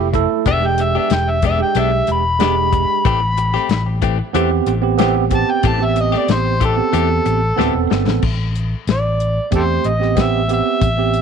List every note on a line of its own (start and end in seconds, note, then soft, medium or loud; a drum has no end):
0.00 0.25 F1 medium
0.13 0.46 A3 loud
0.13 0.47 E4 medium
0.13 0.47 A4 loud
0.13 muted clean electric guitar stroke soft
0.13 kick medium
0.13 closed hi-hat medium
0.46 0.96 E1 medium
0.46 0.63 G#3 medium
0.46 0.63 B3 medium
0.46 0.62 D4 medium
0.46 0.62 G4 medium
0.46 0.68 E5 loud
0.46 kick loud
0.46 closed hi-hat medium
0.61 1.37 G#3 medium
0.61 1.37 D4 medium
0.61 1.38 G4 medium
0.61 muted clean electric guitar stroke soft
0.66 0.84 G5 medium
0.78 muted clean electric guitar stroke soft
0.78 closed hi-hat medium
0.83 0.96 E5 medium
0.95 1.10 B3 soft
0.95 1.11 D4 medium
0.95 1.11 G4 medium
0.95 1.16 E5 medium
1.10 1.61 E1 loud
1.10 muted clean electric guitar stroke soft
1.10 snare loud
1.10 closed hi-hat medium
1.14 1.32 G5 medium
1.30 1.44 E5 medium
1.42 1.60 G#3 medium
1.42 1.59 B3 medium
1.42 1.59 D4 medium
1.42 1.59 G4 medium
1.42 kick medium
1.42 closed hi-hat medium
1.47 1.60 E5 medium
1.58 2.22 G#3 medium
1.58 2.22 D4 medium
1.58 2.23 G4 medium
1.58 muted clean electric guitar stroke soft
1.63 1.81 G5 medium
1.75 2.01 B1 loud
1.75 1.92 G#3 medium
1.75 1.92 B3 medium
1.75 1.91 D4 medium
1.75 1.91 G4 medium
1.75 closed hi-hat medium
1.79 2.09 E5 medium
1.92 muted clean electric guitar stroke soft
2.07 2.84 E1 medium
2.07 muted clean electric guitar stroke soft
2.07 closed hi-hat medium
2.12 4.00 B5 loud
2.39 3.05 G#3 medium
2.39 2.57 G#3 medium
2.39 2.56 B3 medium
2.39 3.05 D4 medium
2.39 2.56 D4 medium
2.39 3.06 G4 medium
2.39 2.55 G4 medium
2.39 snare loud
2.39 closed hi-hat medium
2.56 muted clean electric guitar stroke soft
2.73 muted clean electric guitar stroke soft
2.73 kick medium
2.73 closed hi-hat medium
3.05 3.56 A1 medium
3.05 3.22 E3 medium
3.05 3.21 A3 medium
3.05 3.21 C4 loud
3.05 3.20 G4 loud
3.05 kick loud
3.05 closed hi-hat medium
3.21 muted clean electric guitar stroke soft
3.37 muted clean electric guitar stroke soft
3.37 closed hi-hat medium
3.54 3.70 A3 soft
3.54 3.70 C4 medium
3.54 3.70 G4 medium
3.54 snare soft
3.69 4.20 A1 medium
3.69 muted clean electric guitar stroke soft
3.69 snare loud
3.69 closed hi-hat medium
4.02 4.19 E3 medium
4.02 4.19 A3 medium
4.02 4.18 C4 medium
4.02 4.18 G4 medium
4.02 kick medium
4.02 closed hi-hat medium
4.19 muted clean electric guitar stroke soft
4.33 4.60 E2 medium
4.33 4.51 E3 loud
4.33 4.51 A3 loud
4.33 4.72 B3 medium
4.33 4.72 C4 medium
4.33 4.51 C4 loud
4.33 4.73 G4 loud
4.33 4.50 G4 loud
4.33 closed hi-hat medium
4.51 muted clean electric guitar stroke soft
4.66 5.42 A1 medium
4.66 muted clean electric guitar stroke soft
4.66 closed hi-hat medium
4.82 4.95 B3 medium
4.82 4.95 C4 medium
4.82 4.96 G4 medium
4.97 5.16 E3 medium
4.97 5.16 A3 medium
4.97 5.23 B3 loud
4.97 5.24 C4 loud
4.97 5.15 C4 medium
4.97 5.24 G4 loud
4.97 snare loud
4.97 closed hi-hat medium
5.01 5.15 G4 medium
5.16 muted clean electric guitar stroke soft
5.30 5.68 B3 medium
5.30 5.69 C4 medium
5.30 5.69 G4 loud
5.30 muted clean electric guitar stroke soft
5.30 kick medium
5.30 closed hi-hat medium
5.35 5.53 A5 loud
5.51 5.69 G5 medium
5.63 6.14 A1 medium
5.63 5.80 E3 medium
5.63 5.80 A3 medium
5.63 5.79 C4 medium
5.63 5.79 G4 medium
5.63 kick loud
5.63 closed hi-hat medium
5.68 5.86 A5 medium
5.78 6.54 B3 medium
5.78 6.55 C4 medium
5.78 6.55 G4 medium
5.78 muted clean electric guitar stroke soft
5.85 5.98 E5 loud
5.96 muted clean electric guitar stroke soft
5.96 closed hi-hat medium
6.00 6.14 D#5 medium
6.12 6.28 A3 soft
6.12 6.28 C4 medium
6.12 6.28 G4 medium
6.12 snare soft
6.17 6.34 D5 medium
6.28 6.79 A1 loud
6.28 muted clean electric guitar stroke soft
6.28 snare loud
6.28 closed hi-hat medium
6.33 6.62 C5 medium
6.60 6.77 E3 medium
6.60 6.77 A3 medium
6.60 6.76 C4 medium
6.60 6.76 G4 medium
6.60 kick medium
6.60 closed hi-hat medium
6.65 7.89 A4 loud
6.76 7.39 B3 medium
6.76 7.40 C4 medium
6.76 7.40 G4 medium
6.76 muted clean electric guitar stroke soft
6.93 7.19 E2 loud
6.93 7.09 E3 medium
6.93 7.10 A3 medium
6.93 7.09 C4 medium
6.93 7.09 G4 medium
6.93 closed hi-hat medium
7.10 muted clean electric guitar stroke soft
7.26 7.51 A1 medium
7.26 muted clean electric guitar stroke soft
7.26 closed hi-hat medium
7.56 7.73 D1 medium
7.56 7.74 E3 medium
7.56 7.74 A3 medium
7.56 8.22 B3 loud
7.56 8.23 C4 medium
7.56 7.74 C4 medium
7.56 7.73 G4 medium
7.56 8.23 A4 loud
7.56 snare medium
7.75 7.89 E1 medium
7.75 muted clean electric guitar stroke soft
7.91 8.05 G1 medium
7.91 muted clean electric guitar stroke soft
7.91 snare medium
8.07 8.21 A1 medium
8.07 snare medium
8.22 8.73 A1 medium
8.22 kick loud
8.22 crash medium
8.55 closed hi-hat medium
8.87 9.38 A1 medium
8.87 snare loud
8.87 closed hi-hat medium
8.91 9.50 D5 medium
9.20 closed hi-hat medium
9.51 9.77 E2 medium
9.51 9.89 A3 medium
9.51 9.90 C4 medium
9.51 9.90 G4 medium
9.51 kick loud
9.51 closed hi-hat medium
9.55 9.63 G4 medium
9.55 9.63 A4 medium
9.55 9.90 C5 medium
9.84 10.60 A1 medium
9.84 10.22 D#5 medium
9.84 closed hi-hat medium
9.99 10.13 B3 medium
9.99 10.13 C4 medium
9.99 10.14 G4 medium
9.99 snare soft
10.15 10.41 B3 medium
10.15 10.42 C4 medium
10.15 10.42 G4 medium
10.15 kick medium
10.15 snare loud
10.15 closed hi-hat medium
10.20 10.51 E5 medium
10.48 10.86 B3 medium
10.48 10.87 C4 medium
10.48 10.87 G4 medium
10.48 closed hi-hat medium
10.53 11.22 E5 medium
10.81 11.22 A1 medium
10.81 kick loud
10.81 closed hi-hat medium
10.97 11.22 B3 medium
10.97 11.22 C4 medium
10.97 11.22 G4 medium
11.14 closed hi-hat medium